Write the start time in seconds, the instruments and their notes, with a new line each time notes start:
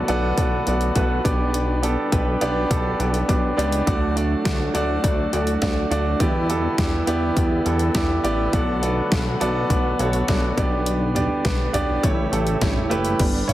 Already playing: tonewheel organ D3 F#3 A3 B3 F#4, grand piano B3 F#4 A4 D5
0.08 analog synth bass B1, grand piano B3 F#4 A4 D5, closed hi-hat
0.38 analog synth bass B1, grand piano B3 F#4 A4 D5, kick, closed hi-hat
0.67 analog synth bass B1, grand piano B3 F#4 A4 D5, closed hi-hat
0.81 closed hi-hat
0.95 analog synth bass B1, grand piano B3 F#4 A4 B4, kick, closed hi-hat
1.24 analog synth bass B1, grand piano B2 B3 D4 G4 D5, tonewheel organ G3 D4, kick, closed hi-hat
1.54 closed hi-hat
1.82 grand piano B3 D4 G4 A4, closed hi-hat
2.12 analog synth bass B1, grand piano B3 D4 G4 B4, kick, closed hi-hat
2.41 analog synth bass B1, grand piano B3 D4 G4 D5, closed hi-hat
2.70 analog synth bass B1, grand piano B3 D4 G4 A4, kick, closed hi-hat
2.99 analog synth bass B1, grand piano B3 D4 G4 D5, closed hi-hat
3.14 closed hi-hat
3.28 analog synth bass B1, grand piano B3 D4 G4 D5, kick, closed hi-hat
3.57 analog synth bass C#2, grand piano B3 D4 G4 D5, closed hi-hat
3.72 closed hi-hat
3.86 analog synth bass D2, grand piano A2 A3 D4 F#4 D5, tonewheel organ F#3 A3, kick, closed hi-hat
4.15 grand piano A3 D4 F#4 D5, closed hi-hat
4.44 analog synth bass D2, grand piano A3 D4 F#4 D5, kick, snare, closed hi-hat
4.74 analog synth bass D2, grand piano A3 D4 F#4 D5, closed hi-hat
5.03 analog synth bass D2, grand piano A3 D4 F#4 D5, kick, closed hi-hat
5.33 analog synth bass D2, grand piano A3 D4 F#4 D5, closed hi-hat
5.47 closed hi-hat
5.62 analog synth bass D2, grand piano A3 D4 F#4 D5, kick, snare, closed hi-hat
5.91 analog synth bass D2, grand piano A3 D4 F#4 D5, closed hi-hat
6.20 analog synth bass E2, grand piano B2 B3 E4 G4 D5, tonewheel organ D3 E3 G3 B3 E4, kick, closed hi-hat
6.49 grand piano B3 E4 G4 A4, closed hi-hat
6.78 analog synth bass E2, grand piano B3 E4 G4 D5, kick, snare, closed hi-hat
7.07 analog synth bass E2, grand piano B3 E4 G4 D5, closed hi-hat
7.36 analog synth bass E2, grand piano B3 E4 G4 D5, kick, closed hi-hat
7.65 analog synth bass E2, grand piano B3 E4 G4 A4, closed hi-hat
7.79 closed hi-hat
7.94 analog synth bass E2, grand piano B3 E4 G4 D5, kick, snare, closed hi-hat
8.24 analog synth bass A1, grand piano B3 E4 G4 D5, closed hi-hat
8.53 analog synth bass B1, tonewheel organ F#3 A3 F#4, grand piano B3 F#4 A4 D5, kick, closed hi-hat
8.82 grand piano B3 F#4 A4 D5, closed hi-hat
9.12 analog synth bass B1, grand piano B3 F#4 A4 D5, kick, snare, closed hi-hat
9.40 analog synth bass B1, grand piano B3 F#4 A4 D5, closed hi-hat
9.70 analog synth bass B1, grand piano B3 F#4 A4 D5, kick, closed hi-hat
9.99 analog synth bass B1, grand piano B3 F#4 A4 C#5, closed hi-hat
10.13 closed hi-hat
10.28 analog synth bass B1, grand piano B3 F#4 A4 D5, kick, snare, closed hi-hat
10.57 analog synth bass B1, grand piano B2 B3 D4 G4 D5, tonewheel organ G3, kick, closed hi-hat
10.86 closed hi-hat
11.15 grand piano B3 D4 G4 D5, closed hi-hat, floor tom
11.45 analog synth bass B1, grand piano B3 D4 G4 B4, kick, snare, closed hi-hat
11.73 analog synth bass B1, grand piano B3 D4 G4 D5, closed hi-hat, floor tom
12.03 analog synth bass A1, tonewheel organ C#3 E3 A3 E4, grand piano A3 E4 G4 C#5, kick, closed hi-hat
12.32 analog synth bass A1, grand piano A3 E4 G4 A4, closed hi-hat
12.47 closed hi-hat
12.61 analog synth bass A1, grand piano A3 E4 G4 C#5, kick, snare, closed hi-hat
12.76 floor tom
12.89 analog synth bass F#1, grand piano A3 E4 G4 B4, closed hi-hat
13.05 closed hi-hat
13.19 analog synth bass G1, tonewheel organ D3 G3 B3, grand piano G3 B3 D4, kick, closed hi-hat, crash
13.48 analog synth bass G1, grand piano E4 C#5, closed hi-hat, floor tom